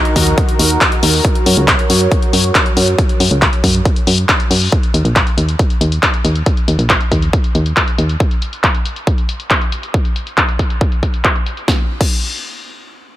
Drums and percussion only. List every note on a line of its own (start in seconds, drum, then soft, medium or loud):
0.05 closed hi-hat soft
0.16 kick medium
0.16 open hi-hat loud
0.27 closed hi-hat soft
0.38 kick loud
0.38 closed hi-hat medium
0.49 closed hi-hat soft
0.59 open hi-hat loud
0.70 closed hi-hat soft
0.81 kick loud
0.81 clap loud
0.81 closed hi-hat medium
0.92 closed hi-hat soft
1.03 open hi-hat loud
1.14 open hi-hat medium
1.25 kick loud
1.25 closed hi-hat medium
1.35 closed hi-hat soft
1.46 open hi-hat loud
1.57 closed hi-hat soft
1.68 kick loud
1.68 clap loud
1.68 closed hi-hat medium
1.79 closed hi-hat soft
1.90 open hi-hat loud
2.12 kick loud
2.12 closed hi-hat medium
2.22 closed hi-hat soft
2.33 open hi-hat loud
2.44 closed hi-hat soft
2.55 kick loud
2.55 clap loud
2.55 closed hi-hat medium
2.66 closed hi-hat soft
2.77 open hi-hat loud
2.88 closed hi-hat soft
2.98 kick loud
2.98 closed hi-hat medium
3.09 closed hi-hat soft
3.20 open hi-hat loud
3.31 closed hi-hat soft
3.42 kick loud
3.42 clap loud
3.42 closed hi-hat medium
3.53 closed hi-hat soft
3.64 kick medium
3.64 open hi-hat loud
3.75 closed hi-hat soft
3.85 kick loud
3.85 closed hi-hat medium
3.96 closed hi-hat soft
4.07 open hi-hat loud
4.18 closed hi-hat soft
4.29 kick loud
4.29 clap loud
4.29 closed hi-hat medium
4.40 closed hi-hat soft
4.51 open hi-hat loud
4.62 open hi-hat medium
4.72 kick loud
4.83 closed hi-hat soft
4.94 closed hi-hat medium
5.05 closed hi-hat soft
5.16 kick loud
5.16 clap loud
5.16 closed hi-hat medium
5.27 closed hi-hat soft
5.38 closed hi-hat medium
5.49 closed hi-hat soft
5.59 kick loud
5.59 closed hi-hat medium
5.70 closed hi-hat soft
5.81 closed hi-hat medium
5.92 closed hi-hat soft
6.03 kick loud
6.03 clap loud
6.03 closed hi-hat medium
6.14 closed hi-hat soft
6.25 closed hi-hat medium
6.35 closed hi-hat soft
6.46 kick loud
6.46 closed hi-hat medium
6.57 closed hi-hat soft
6.68 closed hi-hat medium
6.79 closed hi-hat soft
6.90 kick loud
6.90 clap loud
6.90 closed hi-hat medium
7.01 closed hi-hat soft
7.12 kick medium
7.12 closed hi-hat medium
7.22 closed hi-hat soft
7.33 kick loud
7.33 closed hi-hat medium
7.44 closed hi-hat soft
7.55 closed hi-hat medium
7.66 closed hi-hat soft
7.77 kick loud
7.77 clap loud
7.77 closed hi-hat medium
7.88 closed hi-hat soft
7.99 closed hi-hat medium
8.09 closed hi-hat soft
8.20 kick loud
8.20 closed hi-hat medium
8.31 closed hi-hat soft
8.42 closed hi-hat medium
8.53 closed hi-hat soft
8.64 kick loud
8.64 clap loud
8.64 closed hi-hat medium
8.75 closed hi-hat soft
8.85 closed hi-hat medium
8.96 closed hi-hat soft
9.07 kick loud
9.07 closed hi-hat medium
9.18 closed hi-hat soft
9.29 closed hi-hat medium
9.40 closed hi-hat soft
9.51 kick loud
9.51 clap loud
9.51 closed hi-hat medium
9.62 closed hi-hat soft
9.72 closed hi-hat medium
9.83 closed hi-hat soft
9.94 kick loud
9.94 closed hi-hat medium
10.05 closed hi-hat soft
10.16 closed hi-hat medium
10.27 closed hi-hat soft
10.38 kick loud
10.38 clap loud
10.38 closed hi-hat medium
10.49 closed hi-hat soft
10.59 kick medium
10.59 closed hi-hat medium
10.70 closed hi-hat soft
10.81 kick loud
10.81 closed hi-hat medium
10.92 closed hi-hat soft
11.03 kick medium
11.03 closed hi-hat medium
11.14 closed hi-hat soft
11.25 kick loud
11.25 clap loud
11.25 closed hi-hat medium
11.36 closed hi-hat soft
11.46 closed hi-hat medium
11.57 closed hi-hat soft
11.68 kick loud
11.68 snare medium
12.01 kick loud
12.01 crash medium